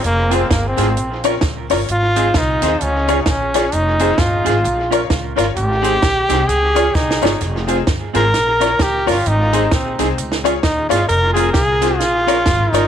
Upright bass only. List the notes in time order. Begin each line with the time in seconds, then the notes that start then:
0.05 F1
0.51 G1
0.78 G#1
0.97 A#1
1.43 C#2
1.70 G1
1.90 G#1
2.35 C2
2.62 D#2
2.81 C#2
3.27 A#1
3.73 F1
4.19 G1
4.46 G#1
4.64 A#1
5.11 C#2
5.38 G1
5.56 G#1
6.03 A#1
6.30 C2
6.49 C#2
6.95 C2
7.22 G1
7.41 F1
7.88 G1
8.15 G#1
8.34 A#1
8.80 C#2
9.07 G1
9.26 G#1
9.72 A#1
9.99 C2
10.18 C#2
10.64 D#2
10.91 G1
11.10 F1
11.55 C2
12.01 A#1
12.47 G#1
12.73 G1